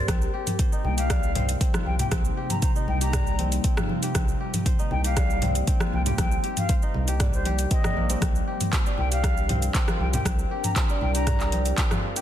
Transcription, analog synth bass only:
0, 0, Header, 1, 2, 480
1, 0, Start_track
1, 0, Key_signature, -3, "minor"
1, 0, Tempo, 508475
1, 78, Time_signature, 4, 2, 24, 8
1, 11529, End_track
2, 0, Start_track
2, 0, Title_t, "Analog synth bass"
2, 0, Program_c, 0, 38
2, 78, Note_on_c, 0, 36, 94
2, 261, Note_off_c, 0, 36, 0
2, 796, Note_on_c, 0, 36, 101
2, 1472, Note_off_c, 0, 36, 0
2, 1758, Note_on_c, 0, 36, 86
2, 1941, Note_off_c, 0, 36, 0
2, 1998, Note_on_c, 0, 36, 98
2, 2181, Note_off_c, 0, 36, 0
2, 2716, Note_on_c, 0, 36, 96
2, 3392, Note_off_c, 0, 36, 0
2, 3918, Note_on_c, 0, 36, 96
2, 4101, Note_off_c, 0, 36, 0
2, 4635, Note_on_c, 0, 36, 101
2, 5311, Note_off_c, 0, 36, 0
2, 5596, Note_on_c, 0, 36, 85
2, 5780, Note_off_c, 0, 36, 0
2, 5837, Note_on_c, 0, 36, 97
2, 6021, Note_off_c, 0, 36, 0
2, 6557, Note_on_c, 0, 36, 98
2, 7232, Note_off_c, 0, 36, 0
2, 7517, Note_on_c, 0, 34, 86
2, 7701, Note_off_c, 0, 34, 0
2, 7759, Note_on_c, 0, 36, 97
2, 7942, Note_off_c, 0, 36, 0
2, 8479, Note_on_c, 0, 36, 99
2, 9153, Note_off_c, 0, 36, 0
2, 9436, Note_on_c, 0, 36, 88
2, 9620, Note_off_c, 0, 36, 0
2, 9678, Note_on_c, 0, 36, 99
2, 9861, Note_off_c, 0, 36, 0
2, 10400, Note_on_c, 0, 36, 98
2, 11074, Note_off_c, 0, 36, 0
2, 11529, End_track
0, 0, End_of_file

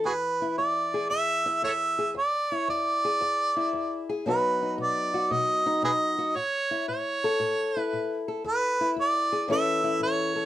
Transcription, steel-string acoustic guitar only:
0, 0, Header, 1, 2, 480
1, 0, Start_track
1, 0, Tempo, 523104
1, 50, Time_signature, 4, 2, 24, 8
1, 9593, End_track
2, 0, Start_track
2, 0, Title_t, "Steel-string acoustic guitar"
2, 0, Program_c, 0, 25
2, 0, Note_on_c, 0, 52, 55
2, 0, Note_on_c, 0, 64, 57
2, 48, Note_on_c, 0, 40, 62
2, 380, Note_off_c, 0, 64, 0
2, 383, Note_on_c, 0, 64, 53
2, 502, Note_off_c, 0, 40, 0
2, 533, Note_on_c, 0, 40, 72
2, 862, Note_on_c, 0, 68, 61
2, 986, Note_off_c, 0, 40, 0
2, 1014, Note_on_c, 0, 40, 65
2, 1327, Note_off_c, 0, 64, 0
2, 1338, Note_on_c, 0, 64, 61
2, 1468, Note_off_c, 0, 40, 0
2, 1489, Note_on_c, 0, 40, 61
2, 1811, Note_off_c, 0, 68, 0
2, 1822, Note_on_c, 0, 68, 53
2, 1947, Note_off_c, 0, 40, 0
2, 1963, Note_off_c, 0, 64, 0
2, 1963, Note_off_c, 0, 68, 0
2, 1968, Note_on_c, 0, 40, 68
2, 1988, Note_off_c, 0, 52, 0
2, 2310, Note_on_c, 0, 64, 50
2, 2427, Note_off_c, 0, 40, 0
2, 2460, Note_on_c, 0, 40, 70
2, 2796, Note_on_c, 0, 68, 60
2, 2914, Note_off_c, 0, 40, 0
2, 2943, Note_on_c, 0, 40, 69
2, 3260, Note_off_c, 0, 64, 0
2, 3271, Note_on_c, 0, 64, 52
2, 3396, Note_off_c, 0, 40, 0
2, 3422, Note_on_c, 0, 40, 60
2, 3746, Note_off_c, 0, 68, 0
2, 3757, Note_on_c, 0, 68, 58
2, 3875, Note_off_c, 0, 40, 0
2, 3891, Note_off_c, 0, 64, 0
2, 3893, Note_off_c, 0, 68, 0
2, 3908, Note_on_c, 0, 47, 63
2, 3915, Note_on_c, 0, 54, 47
2, 3920, Note_on_c, 0, 59, 52
2, 3929, Note_on_c, 0, 63, 56
2, 3935, Note_on_c, 0, 66, 58
2, 4233, Note_off_c, 0, 63, 0
2, 4244, Note_on_c, 0, 63, 49
2, 4358, Note_off_c, 0, 47, 0
2, 4386, Note_on_c, 0, 47, 69
2, 4707, Note_off_c, 0, 66, 0
2, 4718, Note_on_c, 0, 66, 58
2, 4837, Note_off_c, 0, 47, 0
2, 4873, Note_on_c, 0, 47, 74
2, 5184, Note_off_c, 0, 63, 0
2, 5195, Note_on_c, 0, 63, 57
2, 5320, Note_off_c, 0, 47, 0
2, 5346, Note_on_c, 0, 47, 61
2, 5664, Note_off_c, 0, 66, 0
2, 5675, Note_on_c, 0, 66, 51
2, 5796, Note_off_c, 0, 47, 0
2, 5811, Note_off_c, 0, 63, 0
2, 5813, Note_off_c, 0, 54, 0
2, 5814, Note_off_c, 0, 59, 0
2, 5830, Note_off_c, 0, 66, 0
2, 5831, Note_on_c, 0, 45, 63
2, 6157, Note_on_c, 0, 64, 46
2, 6277, Note_off_c, 0, 45, 0
2, 6314, Note_on_c, 0, 45, 67
2, 6644, Note_on_c, 0, 69, 62
2, 6758, Note_off_c, 0, 45, 0
2, 6788, Note_on_c, 0, 45, 72
2, 7122, Note_off_c, 0, 64, 0
2, 7125, Note_on_c, 0, 64, 53
2, 7234, Note_off_c, 0, 45, 0
2, 7276, Note_on_c, 0, 45, 63
2, 7588, Note_off_c, 0, 69, 0
2, 7599, Note_on_c, 0, 69, 59
2, 7717, Note_off_c, 0, 45, 0
2, 7730, Note_off_c, 0, 69, 0
2, 7748, Note_on_c, 0, 40, 67
2, 8078, Note_off_c, 0, 64, 0
2, 8082, Note_on_c, 0, 64, 48
2, 8192, Note_off_c, 0, 40, 0
2, 8225, Note_on_c, 0, 40, 72
2, 8556, Note_on_c, 0, 68, 54
2, 8669, Note_off_c, 0, 40, 0
2, 8686, Note_off_c, 0, 68, 0
2, 8688, Note_off_c, 0, 64, 0
2, 8697, Note_on_c, 0, 45, 76
2, 8703, Note_on_c, 0, 52, 59
2, 8714, Note_on_c, 0, 61, 59
2, 8719, Note_on_c, 0, 64, 60
2, 8726, Note_on_c, 0, 69, 68
2, 9016, Note_off_c, 0, 64, 0
2, 9027, Note_on_c, 0, 64, 63
2, 9144, Note_off_c, 0, 45, 0
2, 9173, Note_on_c, 0, 45, 66
2, 9493, Note_off_c, 0, 69, 0
2, 9504, Note_on_c, 0, 69, 63
2, 9593, Note_off_c, 0, 45, 0
2, 9593, Note_off_c, 0, 52, 0
2, 9593, Note_off_c, 0, 61, 0
2, 9593, Note_off_c, 0, 64, 0
2, 9593, Note_off_c, 0, 69, 0
2, 9593, End_track
0, 0, End_of_file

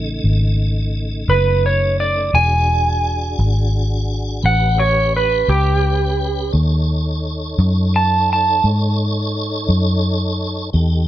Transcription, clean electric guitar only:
0, 0, Header, 1, 2, 480
1, 0, Start_track
1, 0, Tempo, 701098
1, 1604, Time_signature, 12, 3, 24, 8
1, 7584, End_track
2, 0, Start_track
2, 0, Title_t, "Clean electric guitar"
2, 0, Program_c, 0, 27
2, 887, Note_on_c, 0, 71, 106
2, 1118, Note_off_c, 0, 71, 0
2, 1136, Note_on_c, 0, 73, 92
2, 1363, Note_off_c, 0, 73, 0
2, 1370, Note_on_c, 0, 74, 88
2, 1600, Note_off_c, 0, 74, 0
2, 1606, Note_on_c, 0, 80, 99
2, 3017, Note_off_c, 0, 80, 0
2, 3051, Note_on_c, 0, 78, 101
2, 3280, Note_off_c, 0, 78, 0
2, 3282, Note_on_c, 0, 73, 85
2, 3516, Note_off_c, 0, 73, 0
2, 3536, Note_on_c, 0, 71, 88
2, 3761, Note_on_c, 0, 67, 94
2, 3763, Note_off_c, 0, 71, 0
2, 4460, Note_off_c, 0, 67, 0
2, 5449, Note_on_c, 0, 81, 95
2, 5679, Note_off_c, 0, 81, 0
2, 5702, Note_on_c, 0, 81, 99
2, 5925, Note_off_c, 0, 81, 0
2, 7584, End_track
0, 0, End_of_file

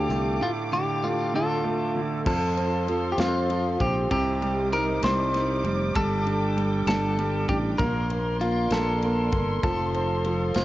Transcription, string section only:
0, 0, Header, 1, 2, 480
1, 0, Start_track
1, 0, Tempo, 615385
1, 321, Time_signature, 6, 3, 24, 8
1, 8304, End_track
2, 0, Start_track
2, 0, Title_t, "String section"
2, 0, Program_c, 0, 48
2, 0, Note_on_c, 0, 69, 69
2, 0, Note_on_c, 0, 77, 65
2, 0, Note_on_c, 0, 86, 82
2, 1732, Note_off_c, 0, 69, 0
2, 1733, Note_off_c, 0, 77, 0
2, 1735, Note_off_c, 0, 86, 0
2, 1761, Note_on_c, 0, 69, 75
2, 1765, Note_on_c, 0, 77, 68
2, 1766, Note_on_c, 0, 84, 80
2, 3189, Note_off_c, 0, 69, 0
2, 3191, Note_off_c, 0, 77, 0
2, 3191, Note_off_c, 0, 84, 0
2, 3208, Note_on_c, 0, 75, 66
2, 3209, Note_on_c, 0, 86, 84
2, 3211, Note_on_c, 0, 72, 73
2, 4631, Note_off_c, 0, 75, 0
2, 4633, Note_off_c, 0, 72, 0
2, 4639, Note_on_c, 0, 69, 73
2, 4643, Note_on_c, 0, 79, 70
2, 6055, Note_off_c, 0, 86, 0
2, 6065, Note_off_c, 0, 69, 0
2, 6067, Note_off_c, 0, 79, 0
2, 6082, Note_on_c, 0, 58, 73
2, 6082, Note_on_c, 0, 74, 72
2, 6084, Note_on_c, 0, 84, 86
2, 7505, Note_off_c, 0, 58, 0
2, 7505, Note_off_c, 0, 74, 0
2, 7519, Note_on_c, 0, 69, 73
2, 7521, Note_on_c, 0, 77, 68
2, 8304, Note_off_c, 0, 69, 0
2, 8304, Note_off_c, 0, 77, 0
2, 8304, Note_off_c, 0, 84, 0
2, 8304, End_track
0, 0, End_of_file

